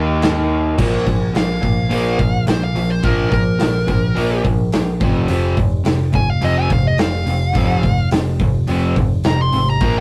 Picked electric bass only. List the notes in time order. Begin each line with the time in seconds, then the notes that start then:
Already playing: D#2
0.79 A#1
1.07 A#1
1.35 A#1
1.63 A#1
1.91 A#1
2.19 A#1
2.47 A#1
2.74 A#1
3.04 A#1
3.32 A#1
3.60 A#1
3.88 A#1
4.16 A#1
4.45 A#1
4.73 A#1
5.01 F1
5.29 F1
5.57 F1
5.86 F1
6.14 F1
6.42 F1
6.70 F1
6.99 F1
7.27 F1
7.55 F1
7.83 F1
8.12 F1
8.40 F1
8.68 F1
8.96 F1
9.25 F1
9.53 G#1
9.81 A#1